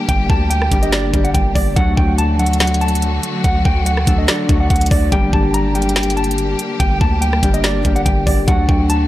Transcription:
Already playing: D3 G3 A#3 D4 G4
0.09 G1 G5, kick, closed hi-hat
0.30 D2 A5, kick
0.50 G5, closed hi-hat
0.62 cross-stick
0.71 G1 G3 A#3 D4 G4, kick, closed hi-hat
0.82 D#5, closed hi-hat
0.92 D5, snare, closed hi-hat
1.13 G1 G3 A#3 D4 G4, kick, closed hi-hat
1.24 F#5, closed hi-hat
1.34 G1 G5, kick, closed hi-hat
1.55 G1 D5, kick, open hi-hat
1.76 D2 F#3 A3 D4 F#4 F#5, kick, closed hi-hat
1.97 D2 G5, kick
2.18 A5, closed hi-hat
2.39 F#3 A3 D4 F#4 F#5, closed hi-hat
2.46 closed hi-hat
2.53 closed hi-hat
2.60 F#5, snare, closed hi-hat
2.67 closed hi-hat
2.74 closed hi-hat
2.81 A5, closed hi-hat
2.88 closed hi-hat
2.95 closed hi-hat
3.02 closed hi-hat
3.23 closed hi-hat
3.44 D2 F#5, kick, closed hi-hat
3.65 D2 G5, kick
3.86 F#5, closed hi-hat
3.97 cross-stick
4.07 D2 F#3 A3 D4 A4, kick, closed hi-hat
4.18 D#5
4.28 D5, snare, closed hi-hat
4.49 D2 F#3 A3 D4 F#4, kick, closed hi-hat
4.60 F#5
4.70 D2 F#5, kick, closed hi-hat
4.76 closed hi-hat
4.81 closed hi-hat
4.86 closed hi-hat
4.91 D2 D5, kick, open hi-hat
5.12 G1 G3 A#3 D4 G4 G5, kick, closed hi-hat
5.33 G1 A5, kick
5.54 A#5, closed hi-hat
5.74 G3 A#3 D4 G4 G5, closed hi-hat
5.82 closed hi-hat
5.89 closed hi-hat
5.96 G5, snare, closed hi-hat
6.03 closed hi-hat
6.10 closed hi-hat
6.17 A5, closed hi-hat
6.24 closed hi-hat
6.31 closed hi-hat
6.38 closed hi-hat
6.59 closed hi-hat
6.80 G1 G5, kick, closed hi-hat
7.01 D2 A5, kick
7.21 G5, closed hi-hat
7.33 cross-stick
7.42 G1 G3 A#3 D4 G4, kick, closed hi-hat
7.54 D#5, closed hi-hat
7.64 D5, snare, closed hi-hat
7.84 G1 G3 A#3 D4 G4, kick, closed hi-hat
7.96 F#5, closed hi-hat
8.05 G1 G5, kick, closed hi-hat
8.27 G1 D5, kick, open hi-hat
8.47 D2 D3 F#3 A3 D4 F#4 F#5, kick, closed hi-hat
8.68 D2 G5, kick
8.90 A5, closed hi-hat

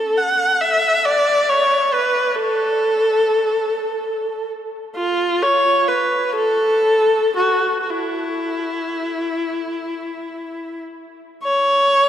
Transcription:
Already playing: A4
0.18 F#5
0.61 E5
1.05 D5
1.50 C#5
1.93 B4
2.35 A4
4.96 F4
5.42 C#5
5.88 B4
6.36 A4
7.37 F#4
7.82 F#4
7.90 E4
11.43 C#5

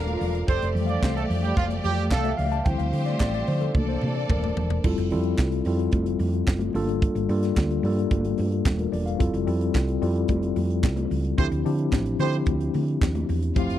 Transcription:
Already playing: D#1 A#3 D4 F4 A4 A#4 C5 D5 F5
0.06 closed hi-hat, high conga
0.13 F4
0.21 E1, open hi-hat, low conga
0.35 closed hi-hat
0.47 F1 A3 C4 G4 A4 C5 D5, kick, closed hi-hat
0.62 F1, closed hi-hat, muted conga
0.67 C5
0.75 F2 E3 G3 A3, open hi-hat
0.87 D4 D5 F5, closed hi-hat
1.01 C2 C4 C5, kick, snare, clap, closed hi-hat, muted conga, high conga
1.17 A3 A4, closed hi-hat
1.30 F2, open hi-hat, low conga
1.44 G3 G4, closed hi-hat
1.57 F1 F3 F4, kick, closed hi-hat, muted conga, high conga
1.71 closed hi-hat, muted conga
1.84 F2 G3 G4, open hi-hat, high conga
1.98 closed hi-hat
2.11 C2 A3 A4 F5, kick, snare, clap, closed hi-hat
2.24 E5, closed hi-hat, muted conga, high conga
2.38 C#2 F5, open hi-hat, low conga
2.52 A5, closed hi-hat
2.64 D2 F3 G3 A3 C4 E4 G4 C5 G5, kick, closed hi-hat, muted conga
2.78 D2 F5, closed hi-hat, muted conga
2.93 D3, open hi-hat
3.06 D5, snare, closed hi-hat
3.19 A1 D5, kick, snare, clap, closed hi-hat, muted conga, high conga
3.34 D5, closed hi-hat, muted conga
3.47 D3 C5, open hi-hat, low conga
3.61 A4, closed hi-hat, low conga
3.75 C2 E3 A3 A#3 D4 A4 D5, kick, high tom, muted conga, high conga
3.89 C5
4.02 C3, mid tom, high conga
4.16 D5
4.30 D#1 A#4, kick, mid tom, muted conga
4.43 mid tom, high conga
4.57 E1, floor tom, low conga
4.70 floor tom
4.84 F1 G3 C4 E4 F4 A4, kick, crash, muted conga
4.97 F1, closed hi-hat
5.10 F2 G3 C4 E4 F4 A4, open hi-hat
5.24 closed hi-hat
5.37 C2, kick, snare, clap, closed hi-hat, muted conga, high conga
5.52 closed hi-hat, muted conga
5.65 F2 G3 C4 E4 F4 A4, open hi-hat, low conga
5.79 closed hi-hat
5.92 F1, kick, closed hi-hat, muted conga, high conga
6.06 closed hi-hat
6.19 F2, open hi-hat, high conga
6.34 closed hi-hat
6.47 F#1, kick, snare, clap, closed hi-hat, muted conga
6.59 closed hi-hat, muted conga, high conga
6.73 G1 G3 A#3 D4 F4 A4, open hi-hat, low conga
6.89 closed hi-hat
7.01 kick, closed hi-hat, muted conga
7.15 G1, closed hi-hat, muted conga
7.29 G2 G3 A#3 D4 F4 A4, open hi-hat
7.43 snare, closed hi-hat
7.55 D2, kick, snare, clap, closed hi-hat, muted conga, high conga
7.71 closed hi-hat, muted conga
7.83 G2 G3 A#3 D4 F4 A4, open hi-hat, low conga
7.99 closed hi-hat
8.11 G1, kick, closed hi-hat, high conga
8.25 closed hi-hat
8.38 G2, open hi-hat, high conga
8.52 closed hi-hat
8.65 D#1, kick, snare, clap, closed hi-hat
8.77 A#4, closed hi-hat, high conga
8.92 E1 D5, open hi-hat, low conga
9.06 F5, closed hi-hat
9.18 F1 G3 C4 E4 F4 A4, kick, closed hi-hat
9.33 F1, closed hi-hat, muted conga
9.46 F2 G3 C4 E4 F4 A4, open hi-hat
9.61 closed hi-hat
9.73 C2, kick, snare, clap, closed hi-hat, high conga
9.88 closed hi-hat, muted conga
10.01 F2 G3 C4 E4 F4 A4, open hi-hat, low conga
10.16 closed hi-hat
10.28 F1, kick, closed hi-hat, muted conga, high conga
10.42 closed hi-hat, muted conga
10.56 F2, open hi-hat, high conga
10.70 closed hi-hat
10.83 C2, kick, snare, clap, closed hi-hat, muted conga
10.96 closed hi-hat, muted conga, high conga
11.11 C#2, open hi-hat, low conga
11.25 closed hi-hat
11.38 D2 F3 A3 C4 D4 E4 G4 C5, kick, closed hi-hat
11.51 D2, closed hi-hat, muted conga
11.65 D3 F3 C4 D4 E4 G4, open hi-hat
11.79 closed hi-hat
11.91 A1, kick, snare, clap, closed hi-hat, muted conga, high conga
12.06 closed hi-hat, muted conga
12.19 D3 F3 A3 C4 D4 E4 G4 C5, open hi-hat, low conga
12.34 closed hi-hat
12.46 D2, kick, closed hi-hat, muted conga, high conga
12.60 closed hi-hat, muted conga
12.74 D3, open hi-hat, high conga
12.88 closed hi-hat
13.01 D#2, kick, snare, clap, closed hi-hat, muted conga
13.15 closed hi-hat, muted conga, high conga
13.29 E2, open hi-hat, low conga
13.42 closed hi-hat
13.56 F1 F3 A3 C4 E4 F4 G4 F5, kick, closed hi-hat, muted conga
13.70 F1, closed hi-hat

